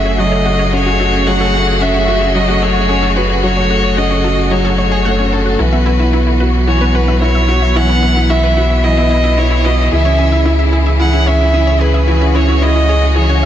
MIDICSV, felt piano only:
0, 0, Header, 1, 2, 480
1, 0, Start_track
1, 0, Tempo, 540541
1, 1123, Time_signature, 4, 2, 24, 8
1, 11947, End_track
2, 0, Start_track
2, 0, Title_t, "Felt piano"
2, 0, Program_c, 0, 0
2, 0, Control_c, 0, 64, 127
2, 0, Note_on_c, 0, 54, 92
2, 0, Note_on_c, 0, 57, 79
2, 0, Note_on_c, 0, 61, 81
2, 0, Note_on_c, 0, 66, 75
2, 163, Note_off_c, 0, 54, 0
2, 163, Note_on_c, 0, 54, 94
2, 277, Note_off_c, 0, 54, 0
2, 283, Note_off_c, 0, 57, 0
2, 283, Note_on_c, 0, 57, 72
2, 352, Note_off_c, 0, 57, 0
2, 407, Note_on_c, 0, 57, 78
2, 474, Note_off_c, 0, 57, 0
2, 645, Note_off_c, 0, 61, 0
2, 645, Note_on_c, 0, 61, 103
2, 755, Note_off_c, 0, 61, 0
2, 769, Note_on_c, 0, 61, 81
2, 880, Note_off_c, 0, 61, 0
2, 891, Note_off_c, 0, 66, 0
2, 891, Note_on_c, 0, 66, 76
2, 1001, Note_off_c, 0, 66, 0
2, 1127, Note_on_c, 0, 54, 98
2, 1239, Note_off_c, 0, 54, 0
2, 1248, Note_on_c, 0, 57, 74
2, 1314, Note_off_c, 0, 57, 0
2, 1371, Note_on_c, 0, 57, 80
2, 1436, Note_off_c, 0, 57, 0
2, 1609, Note_on_c, 0, 61, 106
2, 1716, Note_off_c, 0, 61, 0
2, 1730, Note_on_c, 0, 61, 80
2, 1841, Note_off_c, 0, 61, 0
2, 1848, Note_on_c, 0, 66, 78
2, 1960, Note_off_c, 0, 66, 0
2, 2087, Note_on_c, 0, 54, 102
2, 2199, Note_off_c, 0, 54, 0
2, 2212, Note_on_c, 0, 57, 78
2, 2276, Note_off_c, 0, 57, 0
2, 2328, Note_on_c, 0, 57, 73
2, 2394, Note_off_c, 0, 57, 0
2, 2567, Note_on_c, 0, 61, 101
2, 2673, Note_off_c, 0, 61, 0
2, 2687, Note_on_c, 0, 61, 81
2, 2799, Note_off_c, 0, 61, 0
2, 2806, Note_on_c, 0, 66, 73
2, 2919, Note_off_c, 0, 66, 0
2, 3052, Note_on_c, 0, 54, 97
2, 3162, Note_off_c, 0, 54, 0
2, 3171, Note_on_c, 0, 57, 79
2, 3236, Note_off_c, 0, 57, 0
2, 3288, Note_on_c, 0, 57, 82
2, 3354, Note_off_c, 0, 57, 0
2, 3527, Note_on_c, 0, 61, 109
2, 3635, Note_off_c, 0, 61, 0
2, 3648, Note_on_c, 0, 61, 78
2, 3760, Note_off_c, 0, 61, 0
2, 3769, Note_on_c, 0, 66, 81
2, 3880, Note_off_c, 0, 66, 0
2, 4003, Note_on_c, 0, 54, 97
2, 4117, Note_off_c, 0, 54, 0
2, 4126, Note_on_c, 0, 57, 72
2, 4193, Note_off_c, 0, 57, 0
2, 4243, Note_on_c, 0, 57, 72
2, 4312, Note_off_c, 0, 57, 0
2, 4487, Note_on_c, 0, 57, 105
2, 4599, Note_off_c, 0, 57, 0
2, 4606, Note_on_c, 0, 61, 79
2, 4673, Note_off_c, 0, 61, 0
2, 4729, Note_on_c, 0, 61, 99
2, 4840, Note_off_c, 0, 61, 0
2, 4966, Note_on_c, 0, 52, 97
2, 4975, Control_c, 0, 64, 0
2, 5079, Note_off_c, 0, 52, 0
2, 5086, Note_on_c, 0, 59, 78
2, 5136, Control_c, 0, 64, 127
2, 5153, Note_off_c, 0, 59, 0
2, 5205, Note_on_c, 0, 59, 77
2, 5273, Note_off_c, 0, 59, 0
2, 5323, Note_on_c, 0, 64, 71
2, 5432, Note_off_c, 0, 64, 0
2, 5445, Note_on_c, 0, 64, 102
2, 5558, Note_off_c, 0, 64, 0
2, 5689, Note_on_c, 0, 66, 76
2, 5800, Note_off_c, 0, 66, 0
2, 5926, Note_on_c, 0, 52, 96
2, 6039, Note_off_c, 0, 52, 0
2, 6049, Note_on_c, 0, 59, 75
2, 6115, Note_off_c, 0, 59, 0
2, 6170, Note_on_c, 0, 59, 70
2, 6235, Note_off_c, 0, 59, 0
2, 6289, Note_on_c, 0, 64, 72
2, 6395, Note_off_c, 0, 64, 0
2, 6408, Note_on_c, 0, 64, 105
2, 6520, Note_off_c, 0, 64, 0
2, 6646, Note_on_c, 0, 66, 72
2, 6759, Note_off_c, 0, 66, 0
2, 6888, Note_on_c, 0, 52, 107
2, 7000, Note_off_c, 0, 52, 0
2, 7013, Note_on_c, 0, 59, 76
2, 7077, Note_off_c, 0, 59, 0
2, 7132, Note_on_c, 0, 59, 83
2, 7196, Note_off_c, 0, 59, 0
2, 7250, Note_on_c, 0, 64, 76
2, 7359, Note_off_c, 0, 64, 0
2, 7372, Note_on_c, 0, 64, 103
2, 7482, Note_off_c, 0, 64, 0
2, 7612, Note_on_c, 0, 66, 76
2, 7722, Note_off_c, 0, 66, 0
2, 7851, Note_on_c, 0, 52, 96
2, 7961, Note_off_c, 0, 52, 0
2, 7970, Note_on_c, 0, 59, 78
2, 8035, Note_off_c, 0, 59, 0
2, 8086, Note_on_c, 0, 59, 77
2, 8153, Note_off_c, 0, 59, 0
2, 8210, Note_on_c, 0, 64, 71
2, 8317, Note_off_c, 0, 64, 0
2, 8331, Note_on_c, 0, 64, 95
2, 8441, Note_off_c, 0, 64, 0
2, 8576, Note_on_c, 0, 66, 72
2, 8684, Note_off_c, 0, 66, 0
2, 8811, Note_on_c, 0, 52, 100
2, 8816, Control_c, 0, 64, 0
2, 8921, Note_off_c, 0, 52, 0
2, 8932, Note_on_c, 0, 61, 84
2, 8952, Control_c, 0, 64, 127
2, 8996, Note_off_c, 0, 61, 0
2, 9050, Note_on_c, 0, 61, 83
2, 9115, Note_off_c, 0, 61, 0
2, 9165, Note_on_c, 0, 64, 76
2, 9272, Note_off_c, 0, 64, 0
2, 9285, Note_on_c, 0, 64, 107
2, 9398, Note_off_c, 0, 64, 0
2, 9528, Note_on_c, 0, 68, 78
2, 9640, Note_off_c, 0, 68, 0
2, 9768, Note_on_c, 0, 52, 100
2, 9880, Note_off_c, 0, 52, 0
2, 9886, Note_on_c, 0, 61, 81
2, 9953, Note_off_c, 0, 61, 0
2, 10010, Note_on_c, 0, 61, 73
2, 10075, Note_off_c, 0, 61, 0
2, 10127, Note_on_c, 0, 64, 70
2, 10231, Note_off_c, 0, 64, 0
2, 10245, Note_on_c, 0, 64, 102
2, 10358, Note_off_c, 0, 64, 0
2, 10487, Note_on_c, 0, 68, 77
2, 10599, Note_off_c, 0, 68, 0
2, 10721, Note_on_c, 0, 52, 102
2, 10836, Note_off_c, 0, 52, 0
2, 10844, Note_on_c, 0, 61, 73
2, 10912, Note_off_c, 0, 61, 0
2, 10962, Note_on_c, 0, 61, 82
2, 11031, Note_off_c, 0, 61, 0
2, 11084, Note_on_c, 0, 64, 75
2, 11189, Note_off_c, 0, 64, 0
2, 11203, Note_on_c, 0, 64, 104
2, 11317, Note_off_c, 0, 64, 0
2, 11442, Note_on_c, 0, 68, 82
2, 11557, Note_off_c, 0, 68, 0
2, 11682, Note_on_c, 0, 52, 99
2, 11797, Note_off_c, 0, 52, 0
2, 11805, Note_on_c, 0, 61, 76
2, 11873, Note_off_c, 0, 61, 0
2, 11947, End_track
0, 0, End_of_file